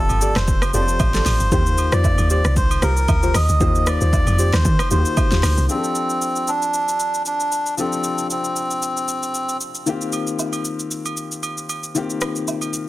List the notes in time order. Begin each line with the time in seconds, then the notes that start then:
Already playing: F3 C4 G4 A4 F5
0.09 G1, high agogo, shaker
0.21 G4 A4 D5, shaker
0.36 F1 C5, cross-stick, snare, shaker
0.48 kick, shaker
0.62 cross-stick, high agogo, shaker
0.73 F1 F3 C4 G4 A4 C5 C#5 D5, shaker
0.82 D5
0.88 shaker
1.00 A1, kick, high agogo, low woodblock, shaker
1.14 G4 A4 D5, snare, shaker
1.26 A1, snare, open hi-hat, high agogo, shaker
1.40 G1, shaker
1.51 D#2 D#3 A#3 F4 G4 C5, kick, shaker
1.67 shaker
1.78 high agogo, shaker
1.92 F2 F4 G4 C5 D5, cross-stick, shaker
2.04 kick, low woodblock, shaker
2.18 D#2, high agogo, shaker
2.30 F4 G4 C5 D5, shaker
2.45 C2, cross-stick, shaker
2.56 C5, kick, shaker
2.71 high agogo, shaker
2.82 C2 F4 G4 A#4 C5, cross-stick, shaker
2.97 shaker
3.08 D2, kick, high agogo, low woodblock, shaker
3.23 F4 G4 C5, shaker
3.34 D#2 D#5, cross-stick, open hi-hat, high agogo, shaker
3.49 D2, shaker
3.60 D#2 D#3 A#3 F4 G4 C5, kick, shaker
3.75 shaker
3.87 D5, cross-stick, high agogo, shaker
4.01 D#2 F4 G4 C5, shaker
4.13 kick, low woodblock, shaker
4.27 F2, high agogo, shaker
4.39 F4 G4 C5, shaker
4.53 D#2 C5, cross-stick, snare, shaker
4.65 D#3, kick, shaker
4.79 cross-stick, high agogo, shaker
4.91 D#2 D#3 A#3 F4 F#4 G4 C5, shaker
4.98 G4
5.06 shaker
5.17 kick, high agogo, low woodblock, shaker
5.31 D#2 F4 G4 C5, snare, shaker
5.43 D2, cross-stick, snare, open hi-hat, high agogo, shaker
5.57 C2, shaker
5.68 F3 C4 D4 G4 G#4, shaker
5.78 A4
5.84 shaker
5.95 shaker
6.10 shaker
6.22 shaker
6.36 shaker
6.48 D4, shaker
6.62 shaker
6.74 shaker
6.88 shaker
7.00 shaker
7.14 shaker
7.26 D4, shaker
7.40 shaker
7.52 shaker
7.66 shaker
7.77 F3 C4 D4 G4 A4, shaker
7.93 shaker
8.04 shaker
8.18 shaker
8.30 C4, shaker
8.44 shaker
8.56 shaker
8.71 shaker
8.82 shaker
8.97 shaker
9.08 shaker
9.23 shaker
9.35 shaker
9.49 shaker
9.61 shaker
9.75 shaker
9.86 D#3 A#3 C4 F4 G4, shaker
10.01 shaker
10.13 high agogo, shaker
10.27 shaker
10.39 low woodblock, shaker
10.53 high agogo, shaker
10.65 shaker
10.79 shaker
10.91 shaker
11.06 high agogo, shaker
11.17 shaker
11.32 shaker
11.43 high agogo, shaker
11.58 shaker
11.69 high agogo, shaker
11.84 shaker
11.95 D#3 A#3 C4 F4 G4, shaker
12.10 shaker
12.21 cross-stick, high agogo, shaker
12.36 shaker
12.48 low woodblock, shaker
12.61 high agogo, shaker
12.74 shaker